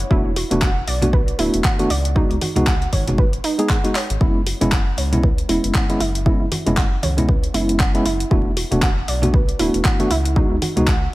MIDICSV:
0, 0, Header, 1, 5, 480
1, 0, Start_track
1, 0, Tempo, 512821
1, 100, Time_signature, 4, 2, 24, 8
1, 10428, End_track
2, 0, Start_track
2, 0, Title_t, "Synth pluck"
2, 0, Program_c, 0, 84
2, 99, Note_on_c, 0, 64, 101
2, 137, Note_off_c, 0, 64, 0
2, 340, Note_on_c, 0, 66, 77
2, 402, Note_off_c, 0, 66, 0
2, 580, Note_on_c, 0, 78, 100
2, 617, Note_off_c, 0, 78, 0
2, 820, Note_on_c, 0, 74, 77
2, 882, Note_off_c, 0, 74, 0
2, 1060, Note_on_c, 0, 71, 100
2, 1097, Note_off_c, 0, 71, 0
2, 1300, Note_on_c, 0, 64, 102
2, 1337, Note_off_c, 0, 64, 0
2, 1540, Note_on_c, 0, 78, 100
2, 1577, Note_off_c, 0, 78, 0
2, 1780, Note_on_c, 0, 74, 77
2, 1842, Note_off_c, 0, 74, 0
2, 2021, Note_on_c, 0, 63, 102
2, 2058, Note_off_c, 0, 63, 0
2, 2261, Note_on_c, 0, 66, 74
2, 2322, Note_off_c, 0, 66, 0
2, 2500, Note_on_c, 0, 78, 99
2, 2537, Note_off_c, 0, 78, 0
2, 2741, Note_on_c, 0, 73, 75
2, 2802, Note_off_c, 0, 73, 0
2, 2980, Note_on_c, 0, 71, 102
2, 3017, Note_off_c, 0, 71, 0
2, 3220, Note_on_c, 0, 63, 103
2, 3257, Note_off_c, 0, 63, 0
2, 3459, Note_on_c, 0, 78, 98
2, 3497, Note_off_c, 0, 78, 0
2, 3699, Note_on_c, 0, 73, 77
2, 3762, Note_off_c, 0, 73, 0
2, 3939, Note_on_c, 0, 64, 102
2, 3977, Note_off_c, 0, 64, 0
2, 4179, Note_on_c, 0, 66, 75
2, 4242, Note_off_c, 0, 66, 0
2, 4420, Note_on_c, 0, 78, 104
2, 4457, Note_off_c, 0, 78, 0
2, 4659, Note_on_c, 0, 73, 75
2, 4722, Note_off_c, 0, 73, 0
2, 4899, Note_on_c, 0, 71, 101
2, 4937, Note_off_c, 0, 71, 0
2, 5139, Note_on_c, 0, 64, 102
2, 5177, Note_off_c, 0, 64, 0
2, 5379, Note_on_c, 0, 78, 101
2, 5417, Note_off_c, 0, 78, 0
2, 5620, Note_on_c, 0, 64, 100
2, 5682, Note_off_c, 0, 64, 0
2, 5860, Note_on_c, 0, 64, 102
2, 5897, Note_off_c, 0, 64, 0
2, 6100, Note_on_c, 0, 66, 77
2, 6162, Note_off_c, 0, 66, 0
2, 6339, Note_on_c, 0, 78, 100
2, 6377, Note_off_c, 0, 78, 0
2, 6579, Note_on_c, 0, 73, 77
2, 6642, Note_off_c, 0, 73, 0
2, 6819, Note_on_c, 0, 71, 101
2, 6857, Note_off_c, 0, 71, 0
2, 7059, Note_on_c, 0, 64, 104
2, 7097, Note_off_c, 0, 64, 0
2, 7299, Note_on_c, 0, 78, 100
2, 7337, Note_off_c, 0, 78, 0
2, 7539, Note_on_c, 0, 64, 100
2, 7602, Note_off_c, 0, 64, 0
2, 7779, Note_on_c, 0, 64, 102
2, 7817, Note_off_c, 0, 64, 0
2, 8019, Note_on_c, 0, 66, 75
2, 8082, Note_off_c, 0, 66, 0
2, 8259, Note_on_c, 0, 78, 102
2, 8297, Note_off_c, 0, 78, 0
2, 8499, Note_on_c, 0, 74, 77
2, 8562, Note_off_c, 0, 74, 0
2, 8740, Note_on_c, 0, 71, 98
2, 8777, Note_off_c, 0, 71, 0
2, 8980, Note_on_c, 0, 64, 104
2, 9017, Note_off_c, 0, 64, 0
2, 9220, Note_on_c, 0, 78, 101
2, 9257, Note_off_c, 0, 78, 0
2, 9460, Note_on_c, 0, 64, 103
2, 9522, Note_off_c, 0, 64, 0
2, 9700, Note_on_c, 0, 63, 103
2, 9737, Note_off_c, 0, 63, 0
2, 9940, Note_on_c, 0, 66, 78
2, 10002, Note_off_c, 0, 66, 0
2, 10180, Note_on_c, 0, 78, 100
2, 10217, Note_off_c, 0, 78, 0
2, 10428, End_track
3, 0, Start_track
3, 0, Title_t, "Tine electric piano"
3, 0, Program_c, 1, 4
3, 96, Note_on_c, 1, 57, 83
3, 99, Note_on_c, 1, 59, 75
3, 101, Note_on_c, 1, 62, 77
3, 104, Note_on_c, 1, 66, 89
3, 273, Note_off_c, 1, 57, 0
3, 274, Note_off_c, 1, 59, 0
3, 275, Note_off_c, 1, 62, 0
3, 277, Note_off_c, 1, 66, 0
3, 475, Note_on_c, 1, 57, 90
3, 477, Note_on_c, 1, 59, 83
3, 480, Note_on_c, 1, 62, 79
3, 482, Note_on_c, 1, 66, 101
3, 627, Note_off_c, 1, 57, 0
3, 629, Note_off_c, 1, 59, 0
3, 630, Note_off_c, 1, 62, 0
3, 631, Note_off_c, 1, 66, 0
3, 954, Note_on_c, 1, 57, 74
3, 957, Note_on_c, 1, 59, 70
3, 960, Note_on_c, 1, 62, 69
3, 962, Note_on_c, 1, 66, 83
3, 1107, Note_off_c, 1, 57, 0
3, 1108, Note_off_c, 1, 59, 0
3, 1110, Note_off_c, 1, 62, 0
3, 1111, Note_off_c, 1, 66, 0
3, 1296, Note_on_c, 1, 57, 74
3, 1298, Note_on_c, 1, 59, 67
3, 1301, Note_on_c, 1, 62, 67
3, 1303, Note_on_c, 1, 66, 79
3, 1643, Note_off_c, 1, 57, 0
3, 1644, Note_off_c, 1, 59, 0
3, 1646, Note_off_c, 1, 62, 0
3, 1647, Note_off_c, 1, 66, 0
3, 1674, Note_on_c, 1, 57, 89
3, 1677, Note_on_c, 1, 59, 82
3, 1679, Note_on_c, 1, 62, 80
3, 1682, Note_on_c, 1, 66, 99
3, 1762, Note_off_c, 1, 57, 0
3, 1764, Note_off_c, 1, 59, 0
3, 1765, Note_off_c, 1, 62, 0
3, 1766, Note_off_c, 1, 66, 0
3, 2015, Note_on_c, 1, 56, 84
3, 2018, Note_on_c, 1, 59, 77
3, 2020, Note_on_c, 1, 63, 75
3, 2023, Note_on_c, 1, 66, 93
3, 2192, Note_off_c, 1, 56, 0
3, 2194, Note_off_c, 1, 59, 0
3, 2195, Note_off_c, 1, 63, 0
3, 2196, Note_off_c, 1, 66, 0
3, 2394, Note_on_c, 1, 56, 87
3, 2396, Note_on_c, 1, 59, 84
3, 2399, Note_on_c, 1, 63, 81
3, 2401, Note_on_c, 1, 66, 98
3, 2547, Note_off_c, 1, 56, 0
3, 2548, Note_off_c, 1, 59, 0
3, 2549, Note_off_c, 1, 63, 0
3, 2551, Note_off_c, 1, 66, 0
3, 2874, Note_on_c, 1, 56, 75
3, 2876, Note_on_c, 1, 59, 69
3, 2879, Note_on_c, 1, 63, 68
3, 2881, Note_on_c, 1, 66, 81
3, 3027, Note_off_c, 1, 56, 0
3, 3028, Note_off_c, 1, 59, 0
3, 3029, Note_off_c, 1, 63, 0
3, 3031, Note_off_c, 1, 66, 0
3, 3354, Note_on_c, 1, 56, 86
3, 3356, Note_on_c, 1, 59, 82
3, 3359, Note_on_c, 1, 63, 81
3, 3361, Note_on_c, 1, 68, 98
3, 3507, Note_off_c, 1, 56, 0
3, 3508, Note_off_c, 1, 59, 0
3, 3509, Note_off_c, 1, 63, 0
3, 3511, Note_off_c, 1, 68, 0
3, 3594, Note_on_c, 1, 56, 88
3, 3597, Note_on_c, 1, 59, 81
3, 3599, Note_on_c, 1, 63, 80
3, 3602, Note_on_c, 1, 66, 94
3, 3682, Note_off_c, 1, 56, 0
3, 3684, Note_off_c, 1, 59, 0
3, 3685, Note_off_c, 1, 63, 0
3, 3686, Note_off_c, 1, 66, 0
3, 3935, Note_on_c, 1, 56, 82
3, 3938, Note_on_c, 1, 59, 73
3, 3940, Note_on_c, 1, 61, 74
3, 3943, Note_on_c, 1, 64, 89
3, 4112, Note_off_c, 1, 56, 0
3, 4114, Note_off_c, 1, 59, 0
3, 4115, Note_off_c, 1, 61, 0
3, 4116, Note_off_c, 1, 64, 0
3, 4314, Note_on_c, 1, 56, 87
3, 4317, Note_on_c, 1, 59, 80
3, 4319, Note_on_c, 1, 61, 82
3, 4322, Note_on_c, 1, 64, 99
3, 4467, Note_off_c, 1, 56, 0
3, 4468, Note_off_c, 1, 59, 0
3, 4469, Note_off_c, 1, 61, 0
3, 4471, Note_off_c, 1, 64, 0
3, 4794, Note_on_c, 1, 56, 74
3, 4797, Note_on_c, 1, 59, 69
3, 4799, Note_on_c, 1, 61, 69
3, 4802, Note_on_c, 1, 64, 80
3, 4947, Note_off_c, 1, 56, 0
3, 4948, Note_off_c, 1, 59, 0
3, 4950, Note_off_c, 1, 61, 0
3, 4951, Note_off_c, 1, 64, 0
3, 5135, Note_on_c, 1, 56, 72
3, 5138, Note_on_c, 1, 59, 69
3, 5141, Note_on_c, 1, 61, 66
3, 5143, Note_on_c, 1, 64, 82
3, 5483, Note_off_c, 1, 56, 0
3, 5484, Note_off_c, 1, 59, 0
3, 5486, Note_off_c, 1, 61, 0
3, 5487, Note_off_c, 1, 64, 0
3, 5514, Note_on_c, 1, 56, 89
3, 5517, Note_on_c, 1, 59, 82
3, 5519, Note_on_c, 1, 61, 80
3, 5522, Note_on_c, 1, 64, 96
3, 5602, Note_off_c, 1, 56, 0
3, 5604, Note_off_c, 1, 59, 0
3, 5605, Note_off_c, 1, 61, 0
3, 5606, Note_off_c, 1, 64, 0
3, 5856, Note_on_c, 1, 56, 81
3, 5858, Note_on_c, 1, 59, 74
3, 5861, Note_on_c, 1, 61, 79
3, 5864, Note_on_c, 1, 64, 94
3, 6033, Note_off_c, 1, 56, 0
3, 6034, Note_off_c, 1, 59, 0
3, 6035, Note_off_c, 1, 61, 0
3, 6036, Note_off_c, 1, 64, 0
3, 6234, Note_on_c, 1, 56, 91
3, 6237, Note_on_c, 1, 59, 81
3, 6239, Note_on_c, 1, 61, 82
3, 6242, Note_on_c, 1, 64, 95
3, 6387, Note_off_c, 1, 56, 0
3, 6388, Note_off_c, 1, 59, 0
3, 6390, Note_off_c, 1, 61, 0
3, 6391, Note_off_c, 1, 64, 0
3, 6715, Note_on_c, 1, 56, 77
3, 6717, Note_on_c, 1, 59, 70
3, 6719, Note_on_c, 1, 61, 70
3, 6722, Note_on_c, 1, 64, 84
3, 6867, Note_off_c, 1, 56, 0
3, 6869, Note_off_c, 1, 59, 0
3, 6870, Note_off_c, 1, 61, 0
3, 6871, Note_off_c, 1, 64, 0
3, 7056, Note_on_c, 1, 56, 71
3, 7058, Note_on_c, 1, 59, 67
3, 7061, Note_on_c, 1, 61, 68
3, 7064, Note_on_c, 1, 64, 80
3, 7403, Note_off_c, 1, 56, 0
3, 7405, Note_off_c, 1, 59, 0
3, 7406, Note_off_c, 1, 61, 0
3, 7407, Note_off_c, 1, 64, 0
3, 7434, Note_on_c, 1, 56, 93
3, 7437, Note_on_c, 1, 59, 84
3, 7439, Note_on_c, 1, 61, 84
3, 7442, Note_on_c, 1, 64, 99
3, 7522, Note_off_c, 1, 56, 0
3, 7524, Note_off_c, 1, 59, 0
3, 7525, Note_off_c, 1, 61, 0
3, 7526, Note_off_c, 1, 64, 0
3, 7776, Note_on_c, 1, 57, 83
3, 7778, Note_on_c, 1, 59, 77
3, 7781, Note_on_c, 1, 62, 78
3, 7783, Note_on_c, 1, 66, 93
3, 7953, Note_off_c, 1, 57, 0
3, 7954, Note_off_c, 1, 59, 0
3, 7955, Note_off_c, 1, 62, 0
3, 7956, Note_off_c, 1, 66, 0
3, 8155, Note_on_c, 1, 57, 90
3, 8157, Note_on_c, 1, 59, 80
3, 8160, Note_on_c, 1, 62, 83
3, 8162, Note_on_c, 1, 66, 97
3, 8307, Note_off_c, 1, 57, 0
3, 8309, Note_off_c, 1, 59, 0
3, 8310, Note_off_c, 1, 62, 0
3, 8311, Note_off_c, 1, 66, 0
3, 8634, Note_on_c, 1, 57, 76
3, 8637, Note_on_c, 1, 59, 69
3, 8639, Note_on_c, 1, 62, 71
3, 8642, Note_on_c, 1, 66, 82
3, 8787, Note_off_c, 1, 57, 0
3, 8788, Note_off_c, 1, 59, 0
3, 8790, Note_off_c, 1, 62, 0
3, 8791, Note_off_c, 1, 66, 0
3, 8976, Note_on_c, 1, 57, 73
3, 8978, Note_on_c, 1, 59, 69
3, 8981, Note_on_c, 1, 62, 67
3, 8983, Note_on_c, 1, 66, 81
3, 9323, Note_off_c, 1, 57, 0
3, 9325, Note_off_c, 1, 59, 0
3, 9326, Note_off_c, 1, 62, 0
3, 9327, Note_off_c, 1, 66, 0
3, 9355, Note_on_c, 1, 57, 90
3, 9357, Note_on_c, 1, 59, 80
3, 9360, Note_on_c, 1, 62, 82
3, 9362, Note_on_c, 1, 66, 99
3, 9443, Note_off_c, 1, 57, 0
3, 9444, Note_off_c, 1, 59, 0
3, 9445, Note_off_c, 1, 62, 0
3, 9446, Note_off_c, 1, 66, 0
3, 9696, Note_on_c, 1, 56, 82
3, 9698, Note_on_c, 1, 59, 77
3, 9701, Note_on_c, 1, 63, 76
3, 9703, Note_on_c, 1, 66, 91
3, 9873, Note_off_c, 1, 56, 0
3, 9874, Note_off_c, 1, 59, 0
3, 9875, Note_off_c, 1, 63, 0
3, 9876, Note_off_c, 1, 66, 0
3, 10075, Note_on_c, 1, 56, 89
3, 10077, Note_on_c, 1, 59, 81
3, 10080, Note_on_c, 1, 63, 83
3, 10082, Note_on_c, 1, 66, 96
3, 10227, Note_off_c, 1, 56, 0
3, 10229, Note_off_c, 1, 59, 0
3, 10230, Note_off_c, 1, 63, 0
3, 10231, Note_off_c, 1, 66, 0
3, 10428, End_track
4, 0, Start_track
4, 0, Title_t, "Analog synth bass"
4, 0, Program_c, 2, 38
4, 100, Note_on_c, 2, 28, 97
4, 406, Note_off_c, 2, 28, 0
4, 479, Note_on_c, 2, 28, 75
4, 767, Note_off_c, 2, 28, 0
4, 820, Note_on_c, 2, 35, 82
4, 1247, Note_off_c, 2, 35, 0
4, 1300, Note_on_c, 2, 26, 92
4, 1393, Note_off_c, 2, 26, 0
4, 1439, Note_on_c, 2, 28, 89
4, 1507, Note_off_c, 2, 28, 0
4, 1780, Note_on_c, 2, 37, 94
4, 2086, Note_off_c, 2, 37, 0
4, 2159, Note_on_c, 2, 37, 89
4, 2227, Note_off_c, 2, 37, 0
4, 2399, Note_on_c, 2, 37, 77
4, 2687, Note_off_c, 2, 37, 0
4, 2740, Note_on_c, 2, 32, 82
4, 3167, Note_off_c, 2, 32, 0
4, 3839, Note_on_c, 2, 32, 101
4, 3907, Note_off_c, 2, 32, 0
4, 3940, Note_on_c, 2, 30, 98
4, 4246, Note_off_c, 2, 30, 0
4, 4319, Note_on_c, 2, 30, 76
4, 4607, Note_off_c, 2, 30, 0
4, 4660, Note_on_c, 2, 37, 84
4, 5087, Note_off_c, 2, 37, 0
4, 5140, Note_on_c, 2, 28, 94
4, 5233, Note_off_c, 2, 28, 0
4, 5279, Note_on_c, 2, 30, 85
4, 5347, Note_off_c, 2, 30, 0
4, 5620, Note_on_c, 2, 30, 96
4, 5926, Note_off_c, 2, 30, 0
4, 5999, Note_on_c, 2, 30, 88
4, 6067, Note_off_c, 2, 30, 0
4, 6239, Note_on_c, 2, 30, 76
4, 6527, Note_off_c, 2, 30, 0
4, 6580, Note_on_c, 2, 37, 85
4, 7007, Note_off_c, 2, 37, 0
4, 7060, Note_on_c, 2, 30, 89
4, 7487, Note_off_c, 2, 30, 0
4, 7540, Note_on_c, 2, 30, 84
4, 7713, Note_off_c, 2, 30, 0
4, 7779, Note_on_c, 2, 28, 101
4, 8086, Note_off_c, 2, 28, 0
4, 8159, Note_on_c, 2, 28, 77
4, 8447, Note_off_c, 2, 28, 0
4, 8500, Note_on_c, 2, 35, 84
4, 8927, Note_off_c, 2, 35, 0
4, 8980, Note_on_c, 2, 26, 95
4, 9073, Note_off_c, 2, 26, 0
4, 9119, Note_on_c, 2, 28, 88
4, 9187, Note_off_c, 2, 28, 0
4, 9461, Note_on_c, 2, 37, 96
4, 9766, Note_off_c, 2, 37, 0
4, 9839, Note_on_c, 2, 37, 91
4, 9907, Note_off_c, 2, 37, 0
4, 10079, Note_on_c, 2, 37, 77
4, 10367, Note_off_c, 2, 37, 0
4, 10428, End_track
5, 0, Start_track
5, 0, Title_t, "Drums"
5, 99, Note_on_c, 9, 36, 108
5, 193, Note_off_c, 9, 36, 0
5, 340, Note_on_c, 9, 46, 94
5, 433, Note_off_c, 9, 46, 0
5, 479, Note_on_c, 9, 42, 67
5, 484, Note_on_c, 9, 64, 82
5, 572, Note_off_c, 9, 42, 0
5, 577, Note_off_c, 9, 64, 0
5, 578, Note_on_c, 9, 39, 112
5, 579, Note_on_c, 9, 36, 111
5, 671, Note_off_c, 9, 39, 0
5, 673, Note_off_c, 9, 36, 0
5, 819, Note_on_c, 9, 46, 97
5, 913, Note_off_c, 9, 46, 0
5, 952, Note_on_c, 9, 64, 93
5, 958, Note_on_c, 9, 42, 67
5, 1046, Note_off_c, 9, 64, 0
5, 1052, Note_off_c, 9, 42, 0
5, 1060, Note_on_c, 9, 36, 112
5, 1153, Note_off_c, 9, 36, 0
5, 1199, Note_on_c, 9, 42, 55
5, 1292, Note_off_c, 9, 42, 0
5, 1300, Note_on_c, 9, 46, 97
5, 1393, Note_off_c, 9, 46, 0
5, 1438, Note_on_c, 9, 42, 67
5, 1532, Note_off_c, 9, 42, 0
5, 1538, Note_on_c, 9, 39, 112
5, 1540, Note_on_c, 9, 36, 108
5, 1632, Note_off_c, 9, 39, 0
5, 1633, Note_off_c, 9, 36, 0
5, 1679, Note_on_c, 9, 42, 57
5, 1683, Note_on_c, 9, 63, 55
5, 1772, Note_off_c, 9, 42, 0
5, 1776, Note_off_c, 9, 63, 0
5, 1780, Note_on_c, 9, 46, 97
5, 1874, Note_off_c, 9, 46, 0
5, 1919, Note_on_c, 9, 42, 66
5, 2013, Note_off_c, 9, 42, 0
5, 2020, Note_on_c, 9, 36, 113
5, 2113, Note_off_c, 9, 36, 0
5, 2159, Note_on_c, 9, 42, 38
5, 2252, Note_off_c, 9, 42, 0
5, 2260, Note_on_c, 9, 46, 98
5, 2263, Note_on_c, 9, 63, 80
5, 2353, Note_off_c, 9, 46, 0
5, 2357, Note_off_c, 9, 63, 0
5, 2393, Note_on_c, 9, 64, 88
5, 2399, Note_on_c, 9, 42, 68
5, 2487, Note_off_c, 9, 64, 0
5, 2492, Note_off_c, 9, 42, 0
5, 2498, Note_on_c, 9, 39, 120
5, 2500, Note_on_c, 9, 36, 113
5, 2592, Note_off_c, 9, 39, 0
5, 2593, Note_off_c, 9, 36, 0
5, 2639, Note_on_c, 9, 42, 39
5, 2732, Note_off_c, 9, 42, 0
5, 2740, Note_on_c, 9, 36, 57
5, 2740, Note_on_c, 9, 46, 102
5, 2742, Note_on_c, 9, 63, 81
5, 2833, Note_off_c, 9, 36, 0
5, 2833, Note_off_c, 9, 46, 0
5, 2835, Note_off_c, 9, 63, 0
5, 2878, Note_on_c, 9, 42, 69
5, 2882, Note_on_c, 9, 64, 94
5, 2972, Note_off_c, 9, 42, 0
5, 2975, Note_off_c, 9, 64, 0
5, 2980, Note_on_c, 9, 36, 112
5, 3073, Note_off_c, 9, 36, 0
5, 3118, Note_on_c, 9, 42, 55
5, 3212, Note_off_c, 9, 42, 0
5, 3220, Note_on_c, 9, 46, 96
5, 3313, Note_off_c, 9, 46, 0
5, 3358, Note_on_c, 9, 42, 66
5, 3452, Note_off_c, 9, 42, 0
5, 3458, Note_on_c, 9, 39, 115
5, 3460, Note_on_c, 9, 36, 107
5, 3551, Note_off_c, 9, 39, 0
5, 3553, Note_off_c, 9, 36, 0
5, 3599, Note_on_c, 9, 42, 55
5, 3692, Note_off_c, 9, 42, 0
5, 3700, Note_on_c, 9, 39, 87
5, 3700, Note_on_c, 9, 46, 100
5, 3793, Note_off_c, 9, 39, 0
5, 3793, Note_off_c, 9, 46, 0
5, 3838, Note_on_c, 9, 42, 69
5, 3932, Note_off_c, 9, 42, 0
5, 3940, Note_on_c, 9, 36, 114
5, 4033, Note_off_c, 9, 36, 0
5, 4180, Note_on_c, 9, 46, 106
5, 4273, Note_off_c, 9, 46, 0
5, 4316, Note_on_c, 9, 64, 92
5, 4319, Note_on_c, 9, 42, 67
5, 4410, Note_off_c, 9, 64, 0
5, 4412, Note_off_c, 9, 42, 0
5, 4418, Note_on_c, 9, 39, 123
5, 4420, Note_on_c, 9, 36, 115
5, 4511, Note_off_c, 9, 39, 0
5, 4513, Note_off_c, 9, 36, 0
5, 4660, Note_on_c, 9, 46, 104
5, 4753, Note_off_c, 9, 46, 0
5, 4797, Note_on_c, 9, 64, 101
5, 4798, Note_on_c, 9, 42, 67
5, 4890, Note_off_c, 9, 64, 0
5, 4892, Note_off_c, 9, 42, 0
5, 4900, Note_on_c, 9, 36, 117
5, 4993, Note_off_c, 9, 36, 0
5, 5038, Note_on_c, 9, 42, 54
5, 5132, Note_off_c, 9, 42, 0
5, 5140, Note_on_c, 9, 46, 107
5, 5233, Note_off_c, 9, 46, 0
5, 5279, Note_on_c, 9, 42, 67
5, 5372, Note_off_c, 9, 42, 0
5, 5378, Note_on_c, 9, 39, 126
5, 5380, Note_on_c, 9, 36, 118
5, 5471, Note_off_c, 9, 39, 0
5, 5473, Note_off_c, 9, 36, 0
5, 5519, Note_on_c, 9, 42, 56
5, 5519, Note_on_c, 9, 63, 55
5, 5612, Note_off_c, 9, 42, 0
5, 5613, Note_off_c, 9, 63, 0
5, 5620, Note_on_c, 9, 46, 103
5, 5714, Note_off_c, 9, 46, 0
5, 5759, Note_on_c, 9, 42, 68
5, 5853, Note_off_c, 9, 42, 0
5, 5860, Note_on_c, 9, 36, 121
5, 5953, Note_off_c, 9, 36, 0
5, 6100, Note_on_c, 9, 46, 110
5, 6101, Note_on_c, 9, 63, 85
5, 6194, Note_off_c, 9, 46, 0
5, 6195, Note_off_c, 9, 63, 0
5, 6239, Note_on_c, 9, 42, 66
5, 6244, Note_on_c, 9, 64, 90
5, 6333, Note_off_c, 9, 42, 0
5, 6338, Note_off_c, 9, 64, 0
5, 6338, Note_on_c, 9, 39, 125
5, 6340, Note_on_c, 9, 36, 122
5, 6432, Note_off_c, 9, 39, 0
5, 6433, Note_off_c, 9, 36, 0
5, 6578, Note_on_c, 9, 63, 92
5, 6580, Note_on_c, 9, 46, 105
5, 6671, Note_off_c, 9, 63, 0
5, 6674, Note_off_c, 9, 46, 0
5, 6719, Note_on_c, 9, 42, 66
5, 6720, Note_on_c, 9, 64, 103
5, 6813, Note_off_c, 9, 42, 0
5, 6813, Note_off_c, 9, 64, 0
5, 6820, Note_on_c, 9, 36, 122
5, 6913, Note_off_c, 9, 36, 0
5, 6959, Note_on_c, 9, 42, 52
5, 7053, Note_off_c, 9, 42, 0
5, 7060, Note_on_c, 9, 46, 105
5, 7154, Note_off_c, 9, 46, 0
5, 7199, Note_on_c, 9, 42, 66
5, 7292, Note_off_c, 9, 42, 0
5, 7298, Note_on_c, 9, 39, 123
5, 7300, Note_on_c, 9, 36, 119
5, 7392, Note_off_c, 9, 39, 0
5, 7393, Note_off_c, 9, 36, 0
5, 7439, Note_on_c, 9, 42, 55
5, 7533, Note_off_c, 9, 42, 0
5, 7540, Note_on_c, 9, 46, 107
5, 7634, Note_off_c, 9, 46, 0
5, 7679, Note_on_c, 9, 42, 65
5, 7773, Note_off_c, 9, 42, 0
5, 7780, Note_on_c, 9, 36, 122
5, 7873, Note_off_c, 9, 36, 0
5, 8020, Note_on_c, 9, 46, 109
5, 8113, Note_off_c, 9, 46, 0
5, 8155, Note_on_c, 9, 64, 85
5, 8159, Note_on_c, 9, 42, 64
5, 8248, Note_off_c, 9, 64, 0
5, 8253, Note_off_c, 9, 42, 0
5, 8258, Note_on_c, 9, 39, 122
5, 8260, Note_on_c, 9, 36, 120
5, 8352, Note_off_c, 9, 39, 0
5, 8353, Note_off_c, 9, 36, 0
5, 8500, Note_on_c, 9, 46, 106
5, 8594, Note_off_c, 9, 46, 0
5, 8628, Note_on_c, 9, 64, 96
5, 8638, Note_on_c, 9, 42, 64
5, 8722, Note_off_c, 9, 64, 0
5, 8732, Note_off_c, 9, 42, 0
5, 8740, Note_on_c, 9, 36, 125
5, 8833, Note_off_c, 9, 36, 0
5, 8879, Note_on_c, 9, 42, 52
5, 8972, Note_off_c, 9, 42, 0
5, 8980, Note_on_c, 9, 46, 109
5, 9074, Note_off_c, 9, 46, 0
5, 9119, Note_on_c, 9, 42, 63
5, 9212, Note_off_c, 9, 42, 0
5, 9218, Note_on_c, 9, 39, 121
5, 9220, Note_on_c, 9, 36, 119
5, 9312, Note_off_c, 9, 39, 0
5, 9313, Note_off_c, 9, 36, 0
5, 9359, Note_on_c, 9, 42, 53
5, 9359, Note_on_c, 9, 63, 60
5, 9452, Note_off_c, 9, 42, 0
5, 9453, Note_off_c, 9, 63, 0
5, 9460, Note_on_c, 9, 46, 110
5, 9553, Note_off_c, 9, 46, 0
5, 9599, Note_on_c, 9, 42, 63
5, 9692, Note_off_c, 9, 42, 0
5, 9700, Note_on_c, 9, 36, 121
5, 9793, Note_off_c, 9, 36, 0
5, 9939, Note_on_c, 9, 63, 75
5, 9940, Note_on_c, 9, 46, 104
5, 10033, Note_off_c, 9, 46, 0
5, 10033, Note_off_c, 9, 63, 0
5, 10078, Note_on_c, 9, 64, 81
5, 10079, Note_on_c, 9, 42, 62
5, 10171, Note_off_c, 9, 64, 0
5, 10172, Note_off_c, 9, 42, 0
5, 10178, Note_on_c, 9, 39, 116
5, 10180, Note_on_c, 9, 36, 119
5, 10272, Note_off_c, 9, 39, 0
5, 10273, Note_off_c, 9, 36, 0
5, 10428, End_track
0, 0, End_of_file